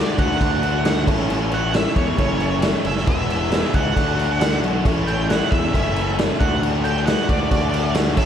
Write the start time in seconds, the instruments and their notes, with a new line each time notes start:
Already playing: overdriven electric guitar D3 A3 D4 F#4, distorted electric guitar D3 A3 D4 F#4, reed electric piano D4 F#4 A4 D5, lead electric guitar D5
0.17 picked electric bass D2, overdriven electric guitar D3, distorted electric guitar A3 D4 F#4, lead electric guitar F#5, kick, crash
0.31 snare
0.39 picked electric bass D2, distorted electric guitar D3 A3 D4 F#4, reed electric piano D4 F#4 A4 D5, kick, crash
0.62 distorted electric guitar A3 D4 F#4, crash
0.84 distorted electric guitar D3 A3 D4 F#4, reed electric piano D4 F#4 A4 D5, snare, crash
1.06 picked electric bass A1, distorted electric guitar A2 E3 A3 C#4 E4, reed electric piano C#4 E4 A4 C#5, kick, crash
1.20 snare
1.28 picked electric bass A1, distorted electric guitar A2 E3 A3 C#4 E4, crash
1.50 distorted electric guitar A3 C#4 E4, lead electric guitar F#5, crash
1.73 distorted electric guitar A2 E3 A3 C#4 E4, reed electric piano C#4 E4 A4 C#5, lead electric guitar E5, snare, crash
1.96 picked electric bass E2, overdriven electric guitar A2 E3, distorted electric guitar A3 C#4 E4, lead electric guitar C#5, kick, crash
2.18 picked electric bass F#1, distorted electric guitar E3 A3 C#4 E4, reed electric piano C#4 E4 A4 C#5, lead electric guitar C#5, kick, crash
2.40 distorted electric guitar A3 C#4 E4, crash
2.62 distorted electric guitar A2 E3 A3 C#4 E4, reed electric piano C#4 E4 A4 C#5, snare, crash
2.84 picked electric bass F#1, distorted electric guitar A3 C#4 E4, lead electric guitar E5, crash
2.97 snare
3.06 picked electric bass E1, overdriven electric guitar E2 B2, distorted electric guitar E3 G#3 B3 E4, reed electric piano B3 E4 G#4 B4, lead electric guitar E5, kick, crash
3.29 distorted electric guitar G#3 B3 E4, crash
3.51 distorted electric guitar E3 G#3 B3 E4, reed electric piano B3 E4 G#4 B4, snare, crash
3.74 picked electric bass C#2, distorted electric guitar G#3 B3 E4, lead electric guitar F#5, kick, crash
3.95 picked electric bass D2, distorted electric guitar D3 A3 D4 F#4, reed electric piano D4 F#4 A4 D5, kick, crash
4.18 distorted electric guitar A3 D4 F#4, crash
4.40 distorted electric guitar D3 A3 D4 F#4, reed electric piano D4 F#4 A4 D5, snare, crash
4.63 picked electric bass B1, distorted electric guitar A3 D4 F#4, crash
4.85 picked electric bass A1, distorted electric guitar A2 E3 A3 C#4 E4, reed electric piano C#4 E4 A4 C#5, kick, crash
5.07 distorted electric guitar A3 C#4 E4, lead electric guitar G5, crash
5.29 distorted electric guitar A2 E3 A3 C#4 E4, reed electric piano C#4 E4 A4 C#5, lead electric guitar F#5, snare, crash
5.51 picked electric bass E2, distorted electric guitar A3 C#4 E4, lead electric guitar E5, kick, crash
5.73 picked electric bass F#1, overdriven electric guitar A2, distorted electric guitar E3 A3 C#4 E4, reed electric piano C#4 E4 A4 E5, lead electric guitar E5, kick, crash
5.95 distorted electric guitar A3 C#4 E4, crash
6.17 distorted electric guitar A2 E3 A3 C#4 E4, reed electric piano C#4 E4 A4 C#5, snare, crash
6.40 picked electric bass D2, distorted electric guitar D3 A3 D4 F#4, reed electric piano D4 F#4 A4 D5, lead electric guitar F#5, kick, crash
6.62 distorted electric guitar D3 A3 D4 F#4, crash
6.84 distorted electric guitar A3 D4 F#4, lead electric guitar G5, crash
7.06 distorted electric guitar D3 A3 D4 F#4, reed electric piano D4 F#4 A4 B4, lead electric guitar F#5, snare, crash
7.28 picked electric bass D2, overdriven electric guitar D3, distorted electric guitar A3 D4 F#4, lead electric guitar D5, kick, crash
7.50 picked electric bass D2, distorted electric guitar D3 A3 D4 F#4, reed electric piano D4 F#4 A4 D5, lead electric guitar D5, kick, crash
7.72 distorted electric guitar A3 D4 F#4, crash
7.94 distorted electric guitar D3 A3 D4 F#4, reed electric piano D4 F#4 A4 D5, snare, crash
8.17 picked electric bass A1, distorted electric guitar A2 E3 A3 C#4 E4, reed electric piano C#4 E4 A4 C#5, lead electric guitar E5, kick, crash